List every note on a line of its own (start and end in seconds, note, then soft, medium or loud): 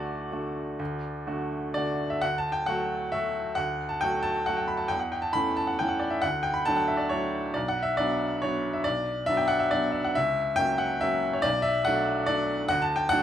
0.00 0.79 D2 medium
0.00 0.28 D3 medium
0.00 0.28 A3 medium
0.00 0.28 F#4 medium
0.00 1.95 A4 medium
0.00 1.73 D5 loud
0.32 0.75 D3 soft
0.32 0.76 A3 soft
0.32 0.76 F#4 soft
0.79 1.25 D2 medium
1.27 1.71 D3 medium
1.27 1.72 A3 medium
1.27 1.72 F#4 medium
1.74 2.19 D3 soft
1.74 2.19 A3 soft
1.74 2.20 F#4 soft
1.74 2.11 D5 medium
2.10 2.22 E5 medium
2.22 2.66 D2 medium
2.22 2.37 F#5 loud
2.38 2.53 A5 medium
2.52 2.67 G5 medium
2.66 3.09 F#3 soft
2.66 3.09 A3 soft
2.66 3.09 F#4 soft
2.66 3.12 F#5 loud
3.12 3.54 F#3 soft
3.12 3.54 A3 soft
3.12 3.54 F#4 soft
3.12 3.56 E5 medium
3.55 4.00 D2 medium
3.55 3.89 F#5 medium
3.89 4.01 A5 medium
4.01 4.44 F#3 soft
4.01 4.44 A3 soft
4.01 4.44 F#4 medium
4.01 4.24 G5 loud
4.23 4.46 A5 loud
4.46 4.87 F#3 soft
4.46 4.88 A3 soft
4.46 4.88 F#4 medium
4.46 4.58 F#5 medium
4.57 4.69 G5 medium
4.68 4.79 B5 medium
4.77 4.90 A5 medium
4.88 5.34 E2 medium
4.88 5.00 G5 medium
4.99 5.12 F#5 medium
5.12 5.23 G5 medium
5.22 5.34 A5 medium
5.33 5.76 E3 soft
5.33 5.76 A3 soft
5.33 5.76 C#4 medium
5.33 5.56 B5 loud
5.56 5.68 A5 medium
5.67 5.79 F#5 medium
5.79 6.20 E3 soft
5.79 6.20 A3 soft
5.79 6.20 C#4 soft
5.79 5.90 G5 medium
5.88 6.01 F#5 medium
6.00 6.11 D5 medium
6.10 6.22 E5 medium
6.22 6.65 D2 medium
6.22 6.44 F#5 loud
6.43 6.54 G5 medium
6.54 6.65 B5 medium
6.65 7.07 F#3 soft
6.65 7.08 A3 soft
6.65 7.08 D4 soft
6.65 6.77 A5 loud
6.77 6.88 F#5 medium
6.88 6.99 E5 medium
6.97 7.10 D5 medium
7.09 7.51 F#3 soft
7.09 7.51 A3 soft
7.09 7.51 D4 medium
7.09 7.54 C#5 medium
7.54 7.97 B1 medium
7.54 7.69 D5 medium
7.68 7.83 F#5 medium
7.83 7.98 E5 medium
7.97 8.39 F#3 soft
7.97 8.39 B3 medium
7.97 8.39 D4 medium
7.97 8.42 D5 loud
8.42 8.82 F#3 soft
8.42 8.82 B3 soft
8.42 8.82 D4 soft
8.42 8.74 C#5 medium
8.73 8.84 E5 medium
8.84 9.27 B1 medium
8.84 9.27 D5 loud
9.26 9.68 F#3 medium
9.26 9.69 B3 medium
9.26 9.69 D4 medium
9.26 9.38 E5 loud
9.37 9.49 G5 medium
9.48 9.60 F#5 loud
9.59 9.71 E5 medium
9.71 10.11 F#3 soft
9.71 10.12 B3 soft
9.71 10.12 D4 medium
9.71 9.93 D5 loud
9.92 10.03 E5 medium
10.04 10.15 F#5 medium
10.15 10.57 C#2 medium
10.15 10.58 E5 loud
10.56 10.98 F#3 medium
10.56 10.98 A#3 medium
10.56 10.98 C#4 medium
10.56 10.79 G5 loud
10.78 11.01 F#5 medium
11.01 11.41 F#3 soft
11.01 11.41 A#3 soft
11.01 11.41 C#4 medium
11.01 11.33 E5 loud
11.33 11.44 C#5 medium
11.42 11.85 B1 medium
11.42 11.64 D5 loud
11.62 11.85 E5 loud
11.85 12.25 F#3 medium
11.85 12.25 A3 medium
11.85 12.26 D4 medium
11.85 12.28 F#5 loud
12.26 12.66 F#3 medium
12.26 12.66 A3 soft
12.26 12.66 D4 medium
12.26 12.69 D5 loud
12.68 13.10 D2 medium
12.68 12.83 F#5 loud
12.82 12.97 A5 loud
12.96 13.11 G5 medium
13.09 13.23 F#3 medium
13.09 13.23 A3 medium
13.09 13.23 D4 medium
13.09 13.23 F#5 loud